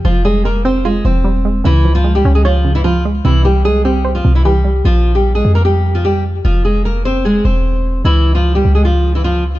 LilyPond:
<<
  \new Staff \with { instrumentName = "Nylon-string guitar" } { \time 4/4 \key f \minor \tempo 4 = 150 <f f'>8 <aes aes'>8 <bes bes'>8 <c' c''>8 <aes aes'>8 <c' c''>4. | <e e'>8. <f f'>8 <g g'>8 <aes aes'>16 <f f'>8. <e e'>16 <f f'>8 r8 | <e e'>8 <g g'>8 <aes aes'>8 <g g'>8. <f f'>8 <e e'>16 <g g'>4 | <f f'>8. <g g'>8 <aes aes'>8 <bes bes'>16 <g g'>8. <f f'>16 <g g'>8 r8 |
<f f'>8 <aes aes'>8 <bes bes'>8 <c' c''>8 <aes aes'>8 <c' c''>4. | <e e'>8. <f f'>8 <g g'>8 <aes aes'>16 <f f'>8. <e e'>16 <f f'>8 r8 | }
  \new Staff \with { instrumentName = "Synth pluck" } { \clef bass \time 4/4 \key f \minor f8 g8 aes8 c'8 f'8 f8 g8 aes8 | des8 f8 aes8 des'8 des''8 des8 f8 aes8 | c8 e8 g8 c'8 c''8 c8 e8 g8 | r1 |
r1 | r1 | }
  \new Staff \with { instrumentName = "808-style bass" } { \clef bass \time 4/4 \key f \minor f,,2~ f,,8 e,,4. | des,4. des,2~ des,8 | c,2~ c,8 c,4. | bes,,4. f,2~ f,8 |
f,,2~ f,,8 e,,4. | des,4. des,2~ des,8 | }
>>